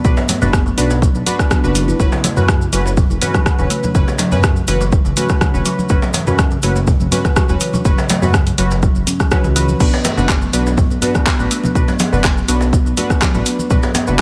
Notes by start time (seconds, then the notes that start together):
0.04 B1 B3 D4 F#4 B4, kick, cabasa
0.17 djembe slap, djembe tone, high conga, cabasa
0.28 A3, open hi-hat, djembe slap, muted conga, djembe tone, high conga, cabasa
0.42 F#1 B3 D4 F#4 B4, djembe bass, low conga, cabasa
0.53 kick, cross-stick, muted conga, djembe tone, cabasa
0.66 F#3, cabasa
0.78 B1 D4 F#4 B4, open hi-hat, muted conga, cabasa
0.90 djembe slap, cabasa
1.02 F#3, kick, low conga, cabasa
1.15 B1, muted conga, cabasa
1.26 D4 F#4 B4, open hi-hat, high conga, djembe tone, cabasa
1.39 kick, cross-stick, muted conga, cabasa
1.51 B3, kick, cross-stick, high conga, cabasa
1.64 F#1 D4 F#4 B4, muted conga, high conga, cabasa
1.75 F#3, open hi-hat, cabasa
1.88 E4, muted conga, high conga, cabasa
2.00 F#1 C#4 F#4 B4, kick, cabasa
2.12 C#3, djembe slap, high conga, djembe tone, cabasa
2.24 A3, open hi-hat, djembe slap, muted conga, high conga, cabasa
2.36 F#2 C#4 F#4 B4, low conga, cabasa
2.48 C#3, kick, cross-stick, muted conga, djembe tone, cabasa
2.62 cabasa
2.73 F#1 F#3 C#4 F#4 B4, open hi-hat, muted conga, cabasa
2.86 djembe slap, cabasa
2.97 F#3, kick, djembe bass, low conga, cabasa
3.10 F#1, muted conga, high conga, cabasa
3.21 E3 C#4 F#4 B4, open hi-hat, djembe bass, cabasa
3.34 F#3, kick, cross-stick, muted conga, high conga, cabasa
3.46 kick, cross-stick, cabasa
3.59 E1 C#3 C#4 F#4 B4, muted conga, cabasa
3.70 A3, open hi-hat, cabasa
3.83 muted conga, high conga, low conga, cabasa
3.95 F#1 C#3 C#4 F#4 B4, kick, cabasa
4.07 djembe slap, djembe tone, high conga, cabasa
4.18 F#3, open hi-hat, djembe slap, muted conga, high conga, djembe tone, cabasa
4.32 F#2 C#4 F#4 B4, low conga, djembe bass, cabasa
4.43 F#3, kick, cross-stick, djembe tone, cabasa
4.56 cabasa
4.68 F#1 E3 C#4 F#4 B4, open hi-hat, muted conga, cabasa
4.81 F#3, djembe slap, cabasa
4.92 kick, low conga, cabasa
5.05 F#1 C#3, muted conga, cabasa
5.17 A3 C#4 F#4 B4, open hi-hat, djembe tone, high conga, cabasa
5.29 kick, cross-stick, muted conga, cabasa
5.41 C#3, kick, cross-stick, high conga, cabasa
5.54 E1 C#4 F#4 B4, muted conga, high conga, cabasa
5.65 F#3, open hi-hat, cabasa
5.79 muted conga, high conga, cabasa
5.89 F#1 F#3 C#4 F#4 B4, kick, cabasa
6.02 djembe slap, djembe tone, high conga, cabasa
6.14 E3, open hi-hat, djembe slap, muted conga, high conga, cabasa
6.27 F#2 F#3 C#4 F#4 B4, low conga, cabasa
6.38 kick, cross-stick, muted conga, djembe tone, cabasa
6.51 C#3, cabasa
6.63 F#1 A3 C#4 F#4 B4, open hi-hat, muted conga, cabasa
6.76 djembe slap, cabasa
6.87 C#3, kick, djembe bass, low conga, cabasa
7.00 F#1, muted conga, high conga, cabasa
7.12 F#3 C#4 F#4 B4, open hi-hat, djembe bass, cabasa
7.24 kick, cross-stick, muted conga, high conga, cabasa
7.36 F#3, kick, cross-stick, cabasa
7.49 E1 C#4 F#4 B4, muted conga, cabasa
7.60 E3, open hi-hat, cabasa
7.73 F#3, muted conga, high conga, low conga, cabasa
7.85 F#1 C#4 F#4 B4, kick, cabasa
7.98 C#3, djembe slap, high conga, djembe tone, cabasa
8.09 A3, open hi-hat, muted conga, djembe slap, djembe tone, high conga, cabasa
8.22 F#2 C#4 F#4 B4, low conga, djembe bass, cabasa
8.33 C#3, kick, cross-stick, muted conga, djembe tone, cabasa
8.47 open hi-hat, cabasa
8.58 F#1 F#3 C#4 F#4 B4, open hi-hat, muted conga, cabasa
8.71 djembe slap, cabasa
8.83 F#3, kick, low conga, cabasa
8.95 F#1, muted conga, cabasa
9.07 C#4, open hi-hat, djembe tone, high conga, cabasa
9.20 F#3, kick, cross-stick, muted conga, cabasa
9.31 C#4 F#4 B4, kick, cross-stick, high conga, cabasa
9.44 C#2 E3, muted conga, high conga, cabasa
9.56 E3 C#4 F#4 B4, open hi-hat, cabasa
9.69 muted conga, high conga, cabasa
9.80 B1 B3 D4 F#4 B4, kick, crash, cabasa
9.93 djembe slap, djembe tone, high conga, cabasa
10.04 A3, open hi-hat, djembe slap, muted conga, high conga, cabasa
10.17 F#1 B3 D4 F#4 B4, low conga, cabasa
10.29 kick, cross-stick, clap, djembe tone, cabasa
10.42 F#3, cabasa
10.53 B1 B3 D4 F#4 B4, open hi-hat, muted conga, cabasa
10.67 djembe slap, cabasa
10.77 F#3, kick, djembe bass, low conga, cabasa
10.90 B1, muted conga, high conga, cabasa
11.02 B3 D4 F#4 B4, open hi-hat, djembe bass, cabasa
11.15 kick, cross-stick, muted conga, high conga, cabasa
11.26 B3, kick, cross-stick, clap, cabasa
11.39 A1 D4 F#4 B4, muted conga, cabasa
11.51 A3, open hi-hat, cabasa
11.63 B3, muted conga, high conga, low conga, cabasa
11.75 B1 D4 F#4 B4, kick, cabasa
11.88 F#3, djembe slap, high conga, djembe tone, cabasa
11.99 B3, open hi-hat, muted conga, djembe slap, high conga, djembe tone, cabasa
12.12 F#1 D4 F#4 B4, djembe bass, low conga, cabasa
12.24 F#3, kick, cross-stick, clap, djembe tone, cabasa
12.38 cabasa
12.48 B1 B3 D4 F#4 B4, open hi-hat, muted conga, cabasa
12.61 djembe slap, cabasa
12.73 B3, kick, low conga, cabasa
12.86 B1, muted conga, cabasa
12.97 A3 D4 F#4 B4, open hi-hat, djembe tone, high conga, cabasa
13.10 B3, kick, cross-stick, muted conga, cabasa
13.22 kick, cross-stick, clap, high conga, cabasa
13.34 A1 F#3 D4 F#4 B4, muted conga, high conga, cabasa
13.46 B3, open hi-hat, cabasa
13.59 muted conga, high conga, cabasa
13.70 B1 F#3 D4 F#4 B4, kick, cabasa
13.83 djembe slap, djembe tone, high conga, cabasa
13.94 B3, open hi-hat, djembe slap, muted conga, high conga, cabasa
14.07 F#1 D4 F#4 B4, low conga, cabasa